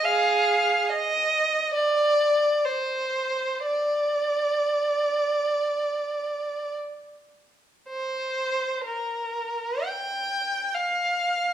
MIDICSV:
0, 0, Header, 1, 2, 480
1, 0, Start_track
1, 0, Tempo, 500000
1, 11074, End_track
2, 0, Start_track
2, 0, Title_t, "Violin"
2, 0, Program_c, 0, 40
2, 45, Note_on_c, 0, 68, 74
2, 49, Note_on_c, 0, 77, 82
2, 827, Note_off_c, 0, 68, 0
2, 864, Note_on_c, 0, 75, 82
2, 868, Note_off_c, 0, 77, 0
2, 1670, Note_on_c, 0, 74, 79
2, 1677, Note_off_c, 0, 75, 0
2, 2524, Note_off_c, 0, 74, 0
2, 2545, Note_on_c, 0, 72, 71
2, 3503, Note_on_c, 0, 74, 68
2, 3508, Note_off_c, 0, 72, 0
2, 6439, Note_off_c, 0, 74, 0
2, 7577, Note_on_c, 0, 72, 72
2, 8430, Note_off_c, 0, 72, 0
2, 8489, Note_on_c, 0, 70, 58
2, 9451, Note_off_c, 0, 70, 0
2, 9458, Note_on_c, 0, 79, 68
2, 10305, Note_off_c, 0, 79, 0
2, 10316, Note_on_c, 0, 77, 64
2, 11074, Note_off_c, 0, 77, 0
2, 11074, End_track
0, 0, End_of_file